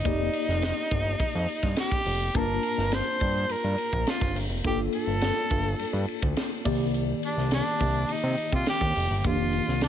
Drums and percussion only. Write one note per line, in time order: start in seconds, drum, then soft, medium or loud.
0.05 kick loud
0.05 hi-hat pedal medium
0.05 ride medium
0.33 ride medium
0.49 snare soft
0.62 snare loud
0.62 ride medium
0.91 kick loud
0.91 ride medium
1.20 kick loud
1.20 ride medium
1.48 ride medium
1.63 kick loud
1.63 snare soft
1.76 snare loud
1.76 ride medium
1.91 kick loud
1.91 snare soft
2.06 open hi-hat medium
2.06 ride medium
2.35 kick loud
2.35 hi-hat pedal medium
2.35 ride medium
2.63 ride medium
2.79 snare soft
2.92 snare loud
2.92 ride medium
3.20 kick medium
3.20 ride medium
3.49 ride medium
3.78 ride medium
3.93 kick loud
4.07 snare loud
4.07 ride medium
4.21 kick loud
4.21 snare soft
4.36 open hi-hat medium
4.36 ride medium
4.64 kick loud
4.64 ride medium
4.93 ride medium
5.21 snare loud
5.21 ride medium
5.50 kick loud
5.50 ride medium
5.79 ride medium
6.08 ride medium
6.22 kick loud
6.37 snare loud
6.37 ride medium
6.65 kick loud
6.65 open hi-hat medium
6.65 ride medium
6.94 hi-hat pedal medium
6.94 ride medium
7.23 ride medium
7.38 snare soft
7.51 snare loud
7.51 ride medium
7.79 kick loud
7.79 ride medium
8.09 ride medium
8.38 ride medium
8.52 kick loud
8.66 snare loud
8.66 ride medium
8.81 kick medium
8.81 snare soft
8.96 open hi-hat medium
8.96 ride medium
9.24 kick loud
9.24 hi-hat pedal medium
9.24 ride medium
9.53 ride medium
9.68 snare soft
9.81 snare loud
9.81 ride medium